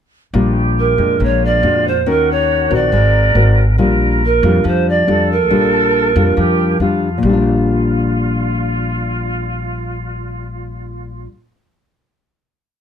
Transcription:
0.34 A#1 A#2 G3 D4 F4 G4
0.79 A#4
0.98 F2 G#3 D4
1.20 A#1 A#2 F4 C#5
1.45 D5
1.63 F2 G#3 D4 F#4
1.87 C5
2.06 D#2 D#3 C#4 F#4 A#4
2.31 C#5
2.71 A#1 C4 F#4 A#4 D5
2.92 G#1 G#3 A#4
3.35 G#1 C4 F#4 A#4
3.78 A#1 A#2 G3 D4 F4 A#4
4.25 A#4
4.43 F2 G3 D4 F4
4.64 F2 F3 C5
4.89 D5
5.07 F2 G3 D4 F4 A4
5.31 A#4
5.50 A#1 A#2 G3 D4 F4
6.16 F2 G3 D4 F4
6.37 F2 F3 G4
6.79 F2 G3 D4 F4
7.18 A#2
7.22 A#1 G3 F4
7.29 D4 F4

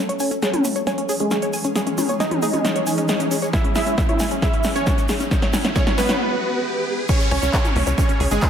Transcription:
Already playing: E3 G#3 C#4 G#4 C#5
0.00 C#4 C#5, riser
0.09 C#5, closed hi-hat
0.19 C#4 C#5 G#5, open hi-hat, shaker
0.31 C#4, closed hi-hat, shaker
0.42 C#4 G#4 C#5, snare, closed hi-hat, shaker
0.54 C#4, closed hi-hat, mid tom
0.64 C#4, open hi-hat, shaker
0.76 C#5, closed hi-hat, shaker
0.87 C#4 C#5 G#5, snare, closed hi-hat, shaker
0.98 C#4, closed hi-hat
1.09 G#4, open hi-hat, shaker
1.20 G#3 C#4 G#4, closed hi-hat, shaker
1.31 C#4, snare, closed hi-hat, shaker
1.42 C#5, closed hi-hat, shaker
1.53 G#5, open hi-hat, shaker
1.64 C#4, closed hi-hat, shaker
1.76 G#4, snare, closed hi-hat, shaker
1.87 C#4, closed hi-hat
1.98 C#4, open hi-hat, mid tom, shaker
2.09 C#5, closed hi-hat, shaker
2.20 D#4 D#5 G#5, snare, closed hi-hat, shaker
2.31 C#4, closed hi-hat, mid tom
2.42 D#4 G#4 D#5, open hi-hat, shaker
2.54 C#4, closed hi-hat, mid tom, shaker
2.65 C#4, snare, closed hi-hat, shaker
2.76 C#5, closed hi-hat
2.87 G#5, open hi-hat, shaker
2.98 C#4, closed hi-hat, shaker
3.08 G#4, snare, closed hi-hat, shaker
3.20 C#4, closed hi-hat, shaker
3.31 C#4, open hi-hat, shaker
3.42 C#5, closed hi-hat, shaker
3.53 E4 E5 G#5, kick, snare, closed hi-hat, shaker
3.64 C#4, closed hi-hat
3.75 E4 G#4 E5, snare, open hi-hat, shaker
3.87 C#4, closed hi-hat, shaker
3.98 C#4 E4 E5, kick, snare, closed hi-hat, shaker
4.09 C#5, closed hi-hat, mid tom
4.20 G#5, snare, open hi-hat, shaker
4.31 C#4, closed hi-hat, shaker
4.42 E4 G#4 E5, kick, snare, closed hi-hat, shaker
4.53 C#4, closed hi-hat
4.63 C#4, snare, open hi-hat, shaker
4.76 C#4 C#5, closed hi-hat, shaker
4.87 G#5, kick, snare, closed hi-hat, shaker
4.98 C#4, closed hi-hat, shaker
5.09 G#4, snare, open hi-hat, shaker
5.20 C#4, closed hi-hat, shaker
5.31 C#4, kick, snare, closed hi-hat, shaker
5.42 C#5, snare, closed hi-hat
5.53 G#5, snare, open hi-hat, mid tom, shaker
5.65 C#4, snare, closed hi-hat, shaker
5.76 C#4 G#4 C#5, kick, snare, closed hi-hat, shaker
5.87 C#4, snare, closed hi-hat, mid tom
5.98 B3 C#4 B4, snare, open hi-hat, shaker
6.09 C#5, snare, closed hi-hat, mid tom, shaker
7.09 C#3 E3 G#3 C#4 G#4 C#5, kick, closed hi-hat, crash, downlifter, shaker
7.20 C#5, closed hi-hat, shaker
7.31 C#2 C#4 C#5 G#5, open hi-hat
7.42 C#2 C#4, closed hi-hat, shaker
7.53 C#4 G#4 C#5, kick, clap, closed hi-hat, shaker
7.65 C#4, closed hi-hat, mid tom, shaker
7.76 C#2 C#4, open hi-hat
7.87 C#2 C#5, closed hi-hat, shaker
7.98 C#4 C#5 G#5, kick, closed hi-hat, shaker
8.09 C#4, closed hi-hat, shaker
8.20 C#2 G#4, open hi-hat
8.31 G#1 G#3 C#4 G#4, closed hi-hat, shaker
8.41 C#4, kick, clap, closed hi-hat, shaker

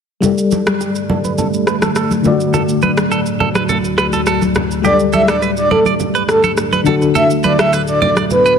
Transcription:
0.20 G2 D3 G3 A3 G4 A4, low conga, shaker
0.25 D5
0.38 shaker
0.51 A4, high conga, shaker
0.67 cross-stick, high conga, shaker
0.81 G4, shaker
0.95 shaker
1.10 A4, high conga, low conga
1.24 B4, high conga, shaker
1.38 A4, low conga, shaker
1.54 shaker
1.67 B4, cross-stick, shaker
1.82 A4, cross-stick, high conga, shaker
1.96 A4, cross-stick, shaker
2.11 high conga, shaker
2.22 D2 A2 D3 F#3 A3 F4, high conga, low conga, shaker
2.27 D5
2.32 F#4
2.40 shaker
2.54 A4, low conga, shaker
2.69 shaker
2.82 B4, high conga, shaker
2.97 cross-stick, high conga, shaker
3.11 A4, shaker
3.26 shaker
3.40 A4, high conga, low conga
3.55 B4, cross-stick, high conga, shaker
3.69 A4, low conga, shaker
3.84 shaker
3.98 B4, cross-stick, shaker
4.13 A4, high conga, shaker
4.26 A4, cross-stick, shaker
4.42 high conga, shaker
4.55 cross-stick, high conga, low conga, shaker
4.71 shaker
4.82 G2 D3 G3 A3 G4 A4 D5, low conga, shaker
4.87 D5
4.99 shaker
5.13 A4 E5, high conga, shaker
5.28 A4 D5, cross-stick, high conga, shaker
5.42 B4, shaker
5.57 D5, shaker
5.71 A4 D5, high conga, low conga
5.86 D5, high conga, shaker
6.00 low conga, shaker
6.15 B4, shaker
6.29 A4, cross-stick, shaker
6.43 A4, high conga, shaker
6.57 cross-stick, shaker
6.72 B4, high conga, shaker
6.84 D2 A2 D3 F#3 D4 F#4 A4, high conga, low conga, shaker
6.89 A4
7.02 shaker
7.15 A4 E5, low conga, shaker
7.30 shaker
7.43 B4 D5, high conga, shaker
7.59 A4 E5, cross-stick, high conga, shaker
7.73 B4, shaker
7.87 D5, shaker
8.02 D5, high conga, low conga
8.16 D5, cross-stick, high conga, shaker
8.30 B4, low conga, shaker
8.46 B4, shaker

